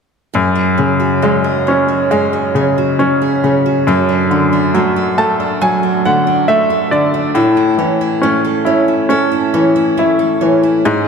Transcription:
0.34 2.10 F#2 medium
0.34 3.83 F#2 medium
0.34 1.43 G#4 soft
0.55 0.99 F#4 soft
0.78 2.51 C#3 soft
0.78 1.66 C#4 soft
1.00 1.88 F#4 soft
1.22 2.99 F#3 soft
1.22 2.09 G#3 soft
1.44 2.10 G#4 soft
1.67 2.54 C#4 soft
1.67 2.98 C#4 soft
1.88 2.33 F#4 soft
2.11 3.96 F#2 medium
2.11 3.83 G#3 soft
2.11 3.20 G#4 medium
2.33 2.77 F#4 soft
2.55 3.42 C#3 soft
2.55 3.43 C#4 soft
2.78 3.65 F#4 soft
2.99 3.87 F#3 soft
2.99 3.84 C#4 soft
3.22 3.87 G#4 medium
3.44 3.86 C#3 soft
3.44 3.96 C#4 soft
3.66 4.08 F#4 soft
3.87 7.32 F#2 medium
3.87 5.60 F#3 medium
3.87 4.96 A4 medium
4.09 4.51 D4 soft
4.31 6.01 D3 soft
4.31 4.74 A3 soft
4.53 5.39 D4 soft
4.74 5.60 F#3 soft
4.74 5.18 A3 medium
4.96 5.62 A4 medium
5.18 6.47 A3 soft
5.18 6.05 A3 medium
5.18 5.59 A5 medium
5.40 5.82 D4 soft
5.61 7.44 F#3 medium
5.61 7.32 F#3 soft
5.61 6.70 A4 medium
5.61 6.02 G#5 medium
5.83 6.26 D4 soft
6.05 6.90 D3 soft
6.05 6.48 A3 medium
6.05 6.46 F#5 soft
6.27 7.13 D4 medium
6.48 7.33 A3 soft
6.48 6.92 A3 soft
6.48 6.89 E5 medium
6.70 7.35 A4 soft
6.91 7.34 D3 soft
6.91 7.78 A3 soft
6.91 7.32 D5 medium
7.14 7.44 D4 soft
7.35 10.81 A2 medium
7.35 9.09 A2 medium
7.35 8.43 A4 medium
7.57 8.00 E4 soft
7.78 9.49 E3 soft
7.78 8.66 C#4 medium
8.01 8.87 E4 soft
8.22 9.96 A3 medium
8.22 9.07 C#4 soft
8.44 9.09 A4 medium
8.65 9.53 C#4 medium
8.65 9.97 E4 soft
8.88 9.30 E4 soft
9.09 10.85 A2 medium
9.09 10.81 C#4 soft
9.09 10.18 A4 medium
9.32 9.75 E4 soft
9.54 10.40 E3 soft
9.54 10.41 C#4 medium
9.76 10.62 E4 medium
9.97 10.95 A3 soft
9.97 10.84 E4 soft
10.19 10.85 A4 soft
10.41 10.85 E3 soft
10.41 11.08 C#4 soft
10.63 10.94 E4 medium
10.85 11.08 G#2 medium
10.85 11.08 G#4 medium

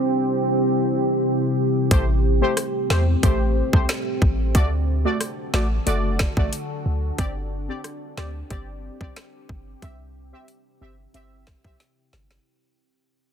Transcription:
0.00 1.89 C3 medium
0.00 1.87 C4 medium
0.00 1.89 E4 medium
0.00 4.51 G4 medium
1.91 2.42 A1 loud
1.91 2.05 A3 loud
1.91 4.52 A3 medium
1.91 4.52 C4 medium
1.91 2.05 G4 medium
1.91 2.05 C5 loud
1.91 kick loud
1.91 closed hi-hat medium
2.41 2.54 A3 medium
2.41 2.54 G4 medium
2.41 2.54 C5 medium
2.57 cross-stick medium
2.57 closed hi-hat medium
2.90 3.16 E2 medium
2.90 3.04 A3 medium
2.90 3.04 G4 medium
2.90 3.04 C5 medium
2.90 cross-stick medium
2.90 snare loud
3.23 3.62 A1 loud
3.23 3.69 A3 medium
3.23 3.69 G4 medium
3.23 3.69 C5 loud
3.23 kick loud
3.23 closed hi-hat medium
3.73 3.85 C2 loud
3.73 3.85 A3 medium
3.73 3.86 G4 medium
3.73 3.86 C5 medium
3.73 kick loud
3.89 cross-stick loud
3.89 snare loud
3.89 closed hi-hat medium
4.22 4.56 A1 medium
4.22 kick medium
4.54 5.06 D2 loud
4.54 7.16 D3 medium
4.54 4.68 A3 medium
4.54 9.78 D4 medium
4.54 4.69 F#4 medium
4.54 7.16 F#4 medium
4.54 7.16 A4 medium
4.54 4.69 D5 loud
4.54 kick loud
4.54 closed hi-hat medium
5.05 5.17 A3 medium
5.05 5.17 F#4 medium
5.05 5.18 D5 medium
5.21 cross-stick medium
5.21 closed hi-hat medium
5.53 5.79 A1 medium
5.53 5.67 A3 medium
5.53 5.67 F#4 medium
5.53 5.68 D5 medium
5.53 cross-stick medium
5.53 snare loud
5.86 6.26 F#1 loud
5.86 6.33 A3 loud
5.86 6.33 F#4 medium
5.86 6.33 D5 loud
5.86 closed hi-hat medium
6.19 kick loud
6.19 cross-stick medium
6.19 snare loud
6.37 6.49 A1 loud
6.37 6.49 A3 medium
6.37 6.49 F#4 medium
6.37 6.49 D5 medium
6.37 kick loud
6.53 closed hi-hat medium
6.86 7.11 D2 medium
7.18 7.70 G1 loud
7.18 7.32 C4 medium
7.18 12.42 C4 medium
7.18 7.32 G4 medium
7.18 12.42 G4 medium
7.18 7.32 D5 loud
7.18 kick loud
7.18 closed hi-hat medium
7.69 7.81 C4 medium
7.69 7.81 G4 medium
7.69 7.81 D5 medium
7.84 cross-stick medium
7.84 closed hi-hat medium
8.17 8.43 D2 medium
8.17 8.31 C4 medium
8.17 8.31 G4 medium
8.17 8.31 D5 medium
8.17 cross-stick medium
8.17 snare loud
8.50 8.90 G1 loud
8.50 8.96 C4 medium
8.50 8.97 G4 medium
8.50 8.97 D5 loud
8.50 kick loud
8.50 closed hi-hat medium
9.01 9.13 B1 medium
9.01 9.13 C4 medium
9.01 9.13 G4 medium
9.01 9.13 D5 medium
9.01 kick loud
9.16 cross-stick loud
9.16 snare loud
9.16 closed hi-hat medium
9.49 9.75 G1 medium
9.49 kick loud
9.82 10.33 C2 loud
9.82 12.43 C3 medium
9.82 9.96 C4 medium
9.82 12.44 E4 medium
9.82 9.96 G4 medium
9.82 9.96 E5 loud
9.82 kick loud
9.82 closed hi-hat medium
10.33 10.45 C4 medium
10.33 10.45 G4 medium
10.33 10.45 E5 medium
10.48 closed hi-hat medium
10.81 11.07 G1 loud
10.81 10.95 C4 medium
10.81 10.95 G4 medium
10.81 10.95 E5 medium
11.14 11.53 G1 loud
11.14 11.60 C4 loud
11.14 11.61 G4 medium
11.14 11.61 E5 loud
11.14 closed hi-hat medium
11.47 kick loud
11.47 cross-stick medium
11.47 snare loud
11.64 11.77 B1 loud
11.64 11.77 C4 medium
11.64 11.77 G4 medium
11.64 11.77 E5 medium
11.64 kick loud
11.80 snare medium
11.80 closed hi-hat medium
12.13 12.39 G1 medium
12.13 snare loud
12.31 snare loud

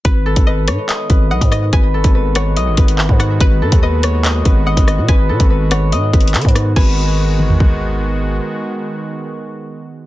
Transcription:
0.05 0.35 G#1 loud
0.05 6.72 D#3 medium
0.05 6.72 G#3 medium
0.05 6.72 B3 medium
0.05 6.72 F#4 medium
0.05 0.44 B4 loud
0.05 0.47 B4 loud
0.05 kick loud
0.05 closed hi-hat medium
0.26 1.94 A4 medium
0.36 0.69 G#1 loud
0.36 kick medium
0.36 closed hi-hat medium
0.47 1.10 B4 medium
0.47 0.86 D#5 medium
0.68 0.78 G#2 loud
0.68 2.35 C#5 medium
0.68 cross-stick loud
0.68 closed hi-hat medium
0.89 1.30 D#5 medium
0.89 clap loud
0.89 closed hi-hat medium
1.10 1.33 G#1 loud
1.10 1.73 B4 medium
1.10 kick loud
1.10 closed hi-hat medium
1.31 1.41 B1 loud
1.31 2.56 D#5 medium
1.31 1.51 F#5 medium
1.41 1.72 G#2 loud
1.41 kick medium
1.41 closed hi-hat medium
1.52 1.72 D#5 loud
1.52 cross-stick medium
1.52 closed hi-hat medium
1.73 2.03 G#1 loud
1.73 2.14 B4 loud
1.73 2.32 G#5 loud
1.73 kick loud
1.73 closed hi-hat medium
1.94 3.62 A4 medium
2.04 2.58 G#1 loud
2.04 kick loud
2.04 closed hi-hat medium
2.15 2.77 B4 medium
2.35 4.03 C#5 medium
2.35 2.95 F#5 medium
2.35 cross-stick loud
2.35 closed hi-hat medium
2.57 2.69 B1 medium
2.57 4.24 D#5 medium
2.57 closed hi-hat medium
2.67 2.77 G#1 loud
2.77 3.08 G#1 loud
2.77 3.40 B4 medium
2.77 kick loud
2.77 closed hi-hat medium
2.88 closed hi-hat medium
2.99 3.19 E5 medium
2.99 clap loud
3.09 3.39 G#2 loud
3.09 kick medium
3.20 3.40 F#5 medium
3.20 cross-stick medium
3.20 closed hi-hat medium
3.41 3.63 G#1 loud
3.41 3.83 B4 medium
3.41 3.80 B4 loud
3.41 kick loud
3.41 closed hi-hat medium
3.62 3.72 G#2 loud
3.62 5.29 A4 medium
3.72 4.43 D#2 loud
3.72 kick medium
3.72 closed hi-hat medium
3.83 4.45 B4 medium
3.83 4.22 D#5 medium
4.03 5.70 C#5 medium
4.03 cross-stick loud
4.03 closed hi-hat medium
4.24 4.66 D#5 medium
4.24 clap loud
4.24 closed hi-hat medium
4.45 4.76 G#1 loud
4.45 5.08 B4 medium
4.45 kick loud
4.45 closed hi-hat medium
4.66 5.92 D#5 medium
4.66 4.87 F#5 medium
4.77 5.00 G#1 loud
4.77 kick medium
4.77 closed hi-hat medium
4.88 5.08 D#5 medium
4.88 cross-stick medium
4.88 closed hi-hat medium
4.98 5.08 B2 loud
5.08 5.31 G#1 loud
5.08 5.50 B4 loud
5.08 5.68 G#5 loud
5.08 kick loud
5.08 closed hi-hat medium
5.29 5.40 B2 loud
5.29 7.49 A4 medium
5.40 5.94 G#1 loud
5.40 kick loud
5.40 closed hi-hat medium
5.50 6.13 B4 medium
5.71 7.62 C#5 medium
5.71 6.72 F#5 medium
5.71 cross-stick loud
5.71 closed hi-hat medium
5.92 6.12 G#2 loud
5.92 7.71 D#5 medium
5.92 closed hi-hat medium
6.13 6.36 G#1 loud
6.13 6.76 B4 medium
6.13 kick loud
6.13 closed hi-hat medium
6.21 closed hi-hat medium
6.28 closed hi-hat medium
6.34 6.44 D#3 loud
6.34 clap loud
6.34 closed hi-hat medium
6.41 6.75 G#2 loud
6.41 kick medium
6.41 closed hi-hat medium
6.48 closed hi-hat medium
6.55 cross-stick medium
6.55 closed hi-hat medium
6.76 8.40 G#1 loud
6.76 10.06 D#3 medium
6.76 10.06 G#3 medium
6.76 10.06 B3 medium
6.76 10.06 F#4 medium
6.76 8.81 B4 medium
6.76 7.98 G#5 medium
6.76 kick loud
6.76 crash medium
7.39 mid tom medium
7.50 floor tom medium
7.60 kick medium

